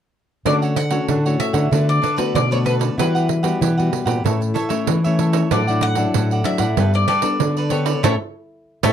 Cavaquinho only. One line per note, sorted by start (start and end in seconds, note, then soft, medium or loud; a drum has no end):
0.46 0.60 D4 soft
0.46 0.60 A4 soft
0.46 0.61 C#5 medium
0.46 0.61 F#5 soft
0.62 0.76 A4 medium
0.62 0.76 C#5 medium
0.62 0.76 F#5 medium
0.91 1.07 A4 soft
0.91 1.07 C#5 medium
0.91 1.06 F#5 medium
1.09 1.23 D4 soft
1.09 1.24 A4 soft
1.09 1.24 C#5 soft
1.09 1.24 F#5 medium
1.25 1.54 A4 soft
1.25 1.53 C#5 medium
1.25 1.52 F#5 medium
1.53 1.70 A4 soft
1.53 1.70 C#5 medium
1.53 1.69 F#5 medium
1.71 1.86 D4 soft
1.71 1.86 A4 soft
1.71 1.87 B4 soft
1.71 1.87 D5 soft
1.89 muted cavaquinho stroke soft
2.02 2.17 D4 medium
2.02 2.17 A4 medium
2.02 2.16 B4 medium
2.02 2.15 D5 medium
2.16 2.49 A4 soft
2.16 2.49 B4 medium
2.16 2.48 D5 medium
2.51 2.64 A4 soft
2.51 2.65 B4 medium
2.51 2.65 D5 medium
2.65 2.80 D4 soft
2.65 2.80 A4 soft
2.65 2.79 B4 medium
2.65 2.78 D5 medium
2.79 2.97 A4 soft
2.79 2.96 B4 medium
2.79 2.96 D5 medium
2.98 3.13 E4 soft
2.98 3.13 G4 soft
2.98 3.13 B4 soft
2.98 3.13 F#5 soft
3.15 3.27 G4 medium
3.15 3.27 B4 medium
3.15 3.28 F#5 medium
3.28 muted cavaquinho stroke soft
3.43 3.60 G4 medium
3.43 3.59 B4 medium
3.43 3.59 F#5 medium
3.61 3.76 E4 soft
3.61 3.77 G4 soft
3.61 3.77 B4 soft
3.61 3.76 F#5 medium
3.78 4.07 G4 soft
3.78 4.06 B4 medium
3.78 4.04 F#5 medium
4.06 4.23 G4 soft
4.06 4.23 B4 medium
4.06 4.22 F#5 medium
4.24 4.39 E4 soft
4.24 4.40 A4 soft
4.24 4.40 C#5 soft
4.24 4.40 E5 soft
4.41 muted cavaquinho stroke soft
4.54 4.70 E4 medium
4.54 4.69 A4 medium
4.54 4.68 C#5 medium
4.54 4.68 E5 medium
4.69 5.02 A4 soft
4.69 5.01 C#5 medium
4.69 5.01 E5 medium
5.04 5.18 A4 medium
5.04 5.19 C#5 medium
5.04 5.19 E5 medium
5.19 5.34 E4 soft
5.19 5.33 A4 soft
5.19 5.33 C#5 medium
5.19 5.32 E5 medium
5.33 5.50 A4 medium
5.33 5.49 C#5 medium
5.33 5.49 E5 medium
5.51 5.66 E4 soft
5.51 5.66 A4 medium
5.51 5.67 D5 soft
5.51 5.66 F#5 soft
5.67 5.81 A4 medium
5.67 5.82 D5 medium
5.67 5.82 F#5 medium
5.82 muted cavaquinho stroke soft
5.96 6.13 A4 medium
5.96 6.13 D5 medium
5.96 6.12 F#5 medium
6.15 6.30 E4 soft
6.15 6.30 A4 soft
6.15 6.30 D5 soft
6.15 6.31 F#5 soft
6.32 6.60 A4 soft
6.32 6.59 D5 medium
6.32 6.58 F#5 medium
6.59 6.76 A4 medium
6.59 6.76 D5 medium
6.59 6.75 F#5 medium
6.78 6.93 G4 soft
6.78 6.93 A4 soft
6.78 6.93 B4 soft
6.78 6.93 D5 soft
6.94 muted cavaquinho stroke soft
7.08 7.23 G4 medium
7.08 7.22 A4 medium
7.08 7.21 B4 medium
7.08 7.21 D5 medium
7.22 7.55 A4 medium
7.22 7.54 B4 medium
7.22 7.54 D5 medium
7.57 7.70 A4 medium
7.57 7.70 B4 medium
7.57 7.71 D5 medium
7.71 7.86 G4 soft
7.71 7.85 A4 soft
7.71 7.85 B4 soft
7.71 7.84 D5 soft
7.85 8.02 A4 medium
7.85 8.02 B4 medium
7.85 8.02 D5 medium
8.03 8.14 E4 medium
8.03 8.14 A4 medium
8.03 8.14 C#5 medium
8.83 8.93 E4 medium
8.83 8.93 A4 medium
8.83 8.93 C#5 medium